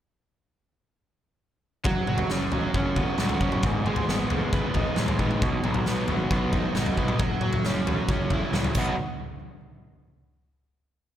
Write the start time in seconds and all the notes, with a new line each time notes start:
1.84 F#1 F#3, kick, floor tom
2.07 F#1 F#3, mid tom
2.18 floor tom
2.30 F#1 C#4, snare
2.52 E1 F#3, floor tom
2.74 F#1 C#4, kick
2.96 B3, kick, floor tom
3.18 C#2 F#3, snare, mid tom
3.29 floor tom
3.41 F#1 C#4, kick
3.52 mid tom
3.63 G#1 G#2, kick, floor tom
3.85 G#1 G#3, mid tom
3.96 floor tom
4.08 G#1 B3, snare
4.30 F#1 G#3, floor tom
4.53 G#1 B3, kick
4.74 D#4, kick, floor tom
4.96 D#2 G#3, snare, mid tom
5.08 floor tom
5.19 G#1 B3, kick, mid tom
5.31 mid tom
5.42 B1 B2, kick, floor tom
5.64 B1 F#3, mid tom
5.74 floor tom
5.86 B1 B3, snare
6.08 G#1 F#3, floor tom
6.31 B1 B3, kick
6.53 D#4, kick, floor tom
6.75 F#1 F#3, snare, mid tom
6.86 floor tom
6.97 B1 B3, kick
7.08 mid tom
7.19 F#1 F#3, kick, floor tom
7.41 F#1 F#3, mid tom
7.53 floor tom
7.64 F#1 C#4, snare
7.85 E1 F#3, floor tom
8.09 F#1 C#4, kick
8.30 E4, kick, floor tom
8.52 C#2 F#3, snare, mid tom
8.64 floor tom
8.75 B1 B2 F#3 B3 D#4 F#4, kick, crash